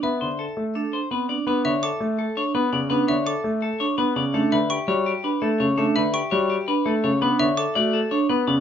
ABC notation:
X:1
M:4/4
L:1/8
Q:1/4=167
K:Dmix
V:1 name="Xylophone"
e z6 z | [K:D] z e d' z4 z | z e d' z4 z | z e c' z4 z |
z e c' z4 z | z e d' z4 z |]
V:2 name="Clean electric guitar"
B c A z A c B d | [K:D] B c A z A c B d | B c A z A c B d | A B G c G B A c |
A B G c G B A c | B c A d A c B d |]
V:3 name="Vibraphone"
z4 D z C D | [K:D] D z4 D z C | D z4 D z C | D z2 F z D z C |
D z2 F z D z C | D z2 F z D z C |]
V:4 name="Grand piano"
B, D, z A, z2 B, z | [K:D] B, D, z A, z2 B, C, | B, D, z A, z2 B, C, | A, D, z G, z2 A, C, |
A, D, z G, z2 A, C, | B, D, z A, z2 B, C, |]